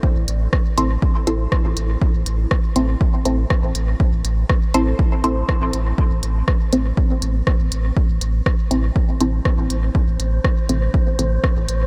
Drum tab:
HH |-x-x-x-x|-x-x-x-x|-x-x-x-x|-x-x-x-x|
SD |--r---r-|--r---r-|--r---r-|--r---r-|
BD |o-o-o-o-|o-o-o-o-|o-o-o-o-|o-o-o-o-|

HH |-x-x-x-x|-x-x-x-x|
SD |--r---r-|--r---r-|
BD |o-o-o-o-|o-o-o-o-|